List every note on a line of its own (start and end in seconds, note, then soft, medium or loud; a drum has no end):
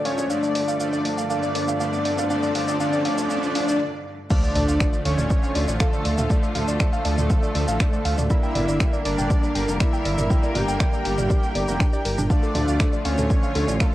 0.00 0.26 D2 medium
0.00 0.26 A2 medium
0.00 0.26 F3 medium
0.00 riser medium
0.05 0.28 D3 medium
0.05 0.28 F3 medium
0.05 0.28 A3 medium
0.05 0.28 C#4 medium
0.05 0.28 C#5 medium
0.05 0.09 F5 loud
0.05 open hi-hat loud
0.18 0.24 D5 medium
0.18 mid tom medium
0.18 shaker medium
0.30 4.26 G2 medium
0.30 0.78 D3 medium
0.30 4.26 D3 medium
0.30 0.78 F3 medium
0.30 0.78 A3 loud
0.30 0.78 D4 loud
0.30 0.78 D5 loud
0.30 0.34 F5 loud
0.30 shaker medium
0.43 0.49 D5 medium
0.43 shaker soft
0.55 0.65 D5 medium
0.55 mid tom medium
0.55 open hi-hat loud
0.68 0.72 F5 loud
0.68 shaker medium
0.80 1.28 D3 medium
0.80 1.28 F3 medium
0.80 1.28 A3 loud
0.80 1.28 D4 loud
0.80 1.28 D5 loud
0.80 0.84 F5 loud
0.80 shaker medium
0.93 0.99 D5 medium
0.93 shaker soft
1.05 1.15 D5 medium
1.05 open hi-hat loud
1.18 1.22 F5 loud
1.18 shaker medium
1.30 1.78 D3 medium
1.30 1.78 F3 medium
1.30 1.78 A3 loud
1.30 1.78 D4 loud
1.30 1.78 D5 loud
1.30 1.34 F5 loud
1.30 shaker medium
1.43 1.49 D5 medium
1.43 shaker soft
1.55 1.65 D5 medium
1.55 open hi-hat loud
1.68 1.72 F5 loud
1.68 shaker medium
1.80 2.28 D3 loud
1.80 2.28 F3 medium
1.80 2.28 A3 loud
1.80 2.28 D4 loud
1.80 2.28 D5 loud
1.80 1.84 F5 loud
1.80 shaker medium
1.93 1.99 D5 medium
1.93 shaker soft
2.05 2.15 D5 medium
2.05 open hi-hat loud
2.18 2.22 F5 loud
2.18 mid tom loud
2.18 shaker medium
2.30 2.53 D3 loud
2.30 2.53 F3 medium
2.30 2.53 A3 loud
2.30 2.53 D4 loud
2.30 2.53 D5 loud
2.30 2.34 F5 loud
2.30 shaker medium
2.43 2.49 D5 medium
2.43 shaker soft
2.55 2.78 D3 medium
2.55 2.78 F3 medium
2.55 2.78 A3 loud
2.55 2.78 D4 loud
2.55 2.78 D5 loud
2.55 2.59 F5 loud
2.55 mid tom medium
2.55 open hi-hat loud
2.68 2.74 D5 medium
2.68 shaker medium
2.80 3.03 D3 medium
2.80 3.03 F3 medium
2.80 3.03 A3 loud
2.80 3.03 D4 loud
2.80 3.03 D5 loud
2.80 2.84 F5 loud
2.80 shaker medium
2.93 2.99 D5 medium
2.93 shaker soft
3.05 3.28 D3 medium
3.05 3.28 F3 medium
3.05 3.28 A3 loud
3.05 3.28 D4 loud
3.05 3.28 D5 loud
3.05 3.09 F5 loud
3.05 open hi-hat loud
3.18 3.24 D5 medium
3.18 mid tom medium
3.18 shaker medium
3.30 3.53 D3 loud
3.30 3.53 F3 medium
3.30 3.53 A3 loud
3.30 3.53 D4 loud
3.30 3.53 D5 loud
3.30 3.34 F5 loud
3.30 shaker medium
3.43 3.49 D5 medium
3.43 shaker soft
3.55 3.78 D3 loud
3.55 3.78 F3 medium
3.55 3.78 A3 loud
3.55 3.78 D4 loud
3.55 3.78 D5 loud
3.55 3.59 F5 loud
3.55 open hi-hat loud
3.68 3.74 D5 medium
3.68 shaker medium
4.30 5.02 D3 medium
4.30 8.26 D3 medium
4.30 5.02 F3 medium
4.30 5.02 A3 loud
4.30 8.26 A3 medium
4.30 4.96 D4 loud
4.30 8.26 F4 medium
4.30 4.96 D5 loud
4.30 4.34 F5 loud
4.30 kick loud
4.30 crash loud
4.30 sub drop medium
4.30 shaker medium
4.43 4.49 D5 medium
4.43 shaker soft
4.55 4.66 D2 loud
4.55 4.65 D5 medium
4.55 mid tom medium
4.55 open hi-hat loud
4.68 4.78 D2 medium
4.68 4.72 F5 loud
4.68 shaker medium
4.80 4.87 D5 medium
4.80 finger snap loud
4.80 kick loud
4.80 shaker medium
4.93 5.02 D5 medium
4.93 shaker soft
5.05 5.16 D2 medium
5.05 5.52 D3 medium
5.05 5.52 F3 medium
5.05 5.52 A3 loud
5.05 5.71 C#4 loud
5.05 5.71 C#5 loud
5.05 5.09 F5 loud
5.05 open hi-hat medium
5.18 5.28 D2 medium
5.18 5.24 D5 medium
5.18 mid tom medium
5.18 shaker medium
5.30 5.40 D5 medium
5.30 kick loud
5.30 shaker medium
5.43 5.47 F5 loud
5.43 shaker soft
5.55 5.66 D2 loud
5.55 6.27 D3 medium
5.55 6.27 F3 medium
5.55 6.27 A3 medium
5.55 5.62 D5 medium
5.55 open hi-hat loud
5.68 5.78 A1 medium
5.68 5.77 D5 medium
5.68 shaker medium
5.80 6.46 A3 loud
5.80 6.46 A4 loud
5.80 5.84 F5 loud
5.80 finger snap loud
5.80 kick loud
5.80 shaker medium
5.93 5.99 D5 medium
5.93 shaker soft
6.05 6.16 D2 medium
6.05 6.15 D5 medium
6.05 open hi-hat medium
6.18 6.28 D2 medium
6.18 6.22 F5 loud
6.18 mid tom medium
6.18 shaker medium
6.30 7.02 D3 medium
6.30 7.02 F3 medium
6.30 7.02 A3 loud
6.30 6.37 D5 medium
6.30 kick loud
6.30 shaker medium
6.43 6.52 D5 medium
6.43 shaker soft
6.55 6.66 D2 medium
6.55 8.21 A3 loud
6.55 8.21 A4 loud
6.55 6.59 F5 loud
6.55 mid tom medium
6.55 open hi-hat loud
6.68 6.78 D2 medium
6.68 6.74 D5 medium
6.68 shaker medium
6.80 finger snap loud
6.80 kick loud
6.80 shaker medium
6.93 6.97 F5 loud
6.93 shaker soft
7.05 7.16 D2 medium
7.05 7.52 D3 medium
7.05 7.52 F3 medium
7.05 7.52 A3 loud
7.05 7.12 D5 medium
7.05 open hi-hat loud
7.18 7.28 D2 medium
7.18 7.27 D5 medium
7.18 mid tom medium
7.18 shaker medium
7.30 7.34 F5 loud
7.30 kick loud
7.30 shaker medium
7.43 7.49 D5 medium
7.43 shaker soft
7.55 7.66 D2 loud
7.55 8.27 D3 medium
7.55 8.27 F3 medium
7.55 8.27 A3 medium
7.55 7.65 D5 medium
7.55 open hi-hat loud
7.68 7.78 A1 medium
7.68 7.72 F5 loud
7.68 shaker medium
7.80 7.87 D5 medium
7.80 finger snap loud
7.80 kick loud
7.80 shaker medium
7.93 8.02 D5 medium
7.93 shaker soft
8.05 8.16 D2 medium
8.05 8.09 F5 loud
8.05 open hi-hat loud
8.18 8.28 D2 medium
8.18 8.24 D5 medium
8.18 mid tom medium
8.18 shaker medium
8.30 9.02 D3 medium
8.30 9.02 G3 medium
8.30 12.26 G3 medium
8.30 9.02 A#3 loud
8.30 10.28 D4 medium
8.30 8.96 E4 loud
8.30 12.26 A#4 medium
8.30 8.40 D5 medium
8.30 8.96 E5 loud
8.30 kick loud
8.30 shaker medium
8.43 8.47 G5 loud
8.43 shaker soft
8.55 8.66 G1 loud
8.55 8.62 D5 medium
8.55 mid tom medium
8.55 open hi-hat loud
8.68 8.78 G1 medium
8.68 8.77 D5 medium
8.68 shaker medium
8.80 8.84 G5 loud
8.80 finger snap loud
8.80 kick loud
8.80 shaker medium
8.93 8.99 D5 medium
8.93 shaker soft
9.05 9.16 G1 medium
9.05 9.52 D3 medium
9.05 9.52 G3 medium
9.05 9.52 A#3 loud
9.05 9.71 D4 loud
9.05 9.15 D5 medium
9.05 9.71 D5 loud
9.05 open hi-hat loud
9.18 9.28 G1 medium
9.18 9.22 G5 loud
9.18 mid tom medium
9.18 shaker medium
9.30 9.37 D5 medium
9.30 kick loud
9.30 shaker medium
9.43 9.52 D5 medium
9.43 shaker soft
9.55 9.66 G1 loud
9.55 10.27 D3 medium
9.55 10.27 G3 medium
9.55 10.27 A#3 medium
9.55 9.59 G5 loud
9.55 open hi-hat loud
9.68 9.78 F1 medium
9.68 9.74 D5 medium
9.68 shaker medium
9.80 10.57 E4 loud
9.80 9.90 D5 medium
9.80 10.55 E5 loud
9.80 finger snap loud
9.80 kick loud
9.80 shaker medium
9.93 9.97 G5 loud
9.93 shaker soft
10.05 10.16 G1 medium
10.05 10.12 D5 medium
10.05 open hi-hat loud
10.18 10.28 G1 medium
10.18 10.27 D5 medium
10.18 mid tom medium
10.18 shaker medium
10.30 11.02 D3 medium
10.30 11.02 G3 medium
10.30 11.02 A#3 loud
10.30 12.28 E4 medium
10.30 10.34 G5 loud
10.30 kick loud
10.30 shaker medium
10.43 10.49 D5 medium
10.43 shaker soft
10.55 10.66 G1 loud
10.55 12.21 G4 loud
10.55 10.65 D5 medium
10.55 12.21 G5 loud
10.55 mid tom medium
10.55 open hi-hat loud
10.68 10.78 G1 medium
10.68 10.72 G5 loud
10.68 shaker medium
10.80 10.87 D5 medium
10.80 finger snap loud
10.80 kick loud
10.80 shaker medium
10.93 11.02 D5 medium
10.93 shaker soft
11.05 11.16 G1 medium
11.05 11.52 D3 medium
11.05 11.52 G3 medium
11.05 11.52 A#3 loud
11.05 11.09 G5 loud
11.05 open hi-hat loud
11.18 11.28 G1 medium
11.18 11.24 D5 medium
11.18 mid tom medium
11.18 shaker medium
11.30 11.40 D5 medium
11.30 kick loud
11.30 shaker medium
11.43 11.47 G5 loud
11.43 shaker soft
11.55 11.66 G1 medium
11.55 11.62 D5 medium
11.55 open hi-hat loud
11.68 11.78 F1 medium
11.68 11.81 D3 medium
11.68 11.81 G3 medium
11.68 11.81 A#3 loud
11.68 11.74 A#5 loud
11.68 shaker medium
11.80 11.90 D4 loud
11.80 finger snap loud
11.80 kick loud
11.80 shaker medium
11.93 11.99 D5 loud
11.93 shaker soft
12.05 12.16 G1 medium
12.05 12.09 A#4 medium
12.05 open hi-hat loud
12.18 12.28 G1 medium
12.18 12.22 D4 medium
12.18 mid tom medium
12.18 shaker medium
12.30 13.02 D3 medium
12.30 13.95 D3 medium
12.30 13.02 F3 medium
12.30 13.02 A3 loud
12.30 13.95 A3 medium
12.30 12.96 D4 loud
12.30 13.95 F4 medium
12.30 12.96 D5 loud
12.30 12.34 F5 loud
12.30 kick loud
12.30 shaker medium
12.43 12.47 A4 medium
12.43 shaker soft
12.55 12.66 D2 medium
12.55 12.65 D5 medium
12.55 mid tom medium
12.55 open hi-hat loud
12.68 12.78 D2 medium
12.68 12.72 F5 loud
12.68 shaker medium
12.80 12.84 A4 medium
12.80 finger snap loud
12.80 kick loud
12.80 shaker medium
12.93 13.02 D5 medium
12.93 shaker soft
13.05 13.16 D2 medium
13.05 13.52 D3 medium
13.05 13.52 F3 medium
13.05 13.52 A3 loud
13.05 13.82 C#4 loud
13.05 13.80 C#5 loud
13.05 13.09 F5 loud
13.05 open hi-hat loud
13.18 13.28 D2 medium
13.18 13.22 A4 medium
13.18 mid tom medium
13.18 shaker medium
13.30 13.40 D5 medium
13.30 kick loud
13.30 shaker medium
13.43 13.47 F5 loud
13.43 shaker soft
13.55 13.66 D2 loud
13.55 13.95 D3 medium
13.55 13.95 F3 medium
13.55 13.95 A3 medium
13.55 13.59 A4 medium
13.55 open hi-hat loud
13.68 13.78 A1 medium
13.68 13.77 D5 medium
13.68 shaker medium
13.80 13.95 A3 loud
13.80 13.95 A4 loud
13.80 13.84 F5 loud
13.80 finger snap loud
13.80 kick loud
13.80 shaker medium